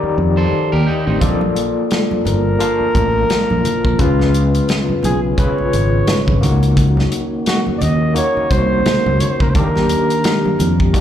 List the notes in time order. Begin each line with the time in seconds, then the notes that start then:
Already playing: D#3 D#4 G4 D5
0.03 muted fingered electric bass stroke
0.18 F2
0.37 A4 C5
0.53 muted fingered electric bass stroke
0.72 D#2 G4 A#4
0.87 D#4 G4
1.07 A1 C4 D#4
1.21 A#1 D3 F3 A#3 F4 A4 D5, kick, closed hi-hat, muted conga, low conga
1.41 muted conga, high conga
1.56 closed hi-hat
1.91 snare, closed hi-hat
2.11 muted fingered electric bass stroke, muted conga, high conga
2.25 G1 A#4, closed hi-hat, low conga
2.59 A#3 F4 F5 A5, closed hi-hat, muted conga
2.81 muted fingered electric bass stroke
2.95 A1, kick, closed hi-hat
3.29 muted fingered electric bass stroke, snare, closed hi-hat, muted conga
3.50 A#1, muted conga, high conga
3.65 closed hi-hat, low conga
3.85 A#1, kick
3.98 C#2 C#3 G#3 B3 C#4 F4 B4, kick, closed hi-hat, low conga
4.19 snare, muted conga, high conga
4.34 closed hi-hat
4.54 closed hi-hat
4.68 snare, closed hi-hat, muted conga
4.89 muted fingered electric bass stroke, high conga
5.03 B1 G#4, closed hi-hat, low conga
5.38 C#3 C#4 F4 B4 C#5, kick, closed hi-hat, muted conga
5.58 muted fingered electric bass stroke, muted conga
5.73 G#1, closed hi-hat
6.07 muted fingered electric bass stroke, snare, closed hi-hat, muted conga
6.28 G#1, kick, muted conga, high conga
6.41 C#2 D#3 A#3 C#4 D#4 F#4, closed hi-hat, low conga
6.63 closed hi-hat
6.77 kick, closed hi-hat, low conga
6.97 snare, muted conga, high conga
7.12 closed hi-hat
7.46 F#4, snare, closed hi-hat, muted conga
7.67 muted fingered electric bass stroke, muted conga, high conga
7.78 D5, closed hi-hat, low conga
7.82 D#2 D#5
8.14 A#3 D#4 F#4 C#5, closed hi-hat, muted conga
8.37 muted fingered electric bass stroke, muted conga
8.51 C2 C5, kick, closed hi-hat
8.86 snare, closed hi-hat
9.06 C#2, muted conga, high conga
9.20 C#5, closed hi-hat, low conga
9.30 C5
9.40 C#2 A#4, kick
9.50 C5
9.54 D#2 D#3 A#3 D4 G4 A#4, kick, closed hi-hat, muted conga, low conga
9.76 snare, muted conga, high conga
9.89 closed hi-hat
10.10 closed hi-hat
10.24 snare, closed hi-hat
10.46 muted fingered electric bass stroke, muted conga, high conga
10.59 F2, closed hi-hat, low conga
10.80 kick
10.94 D#3 A#3 D4 F#4, kick, closed hi-hat, muted conga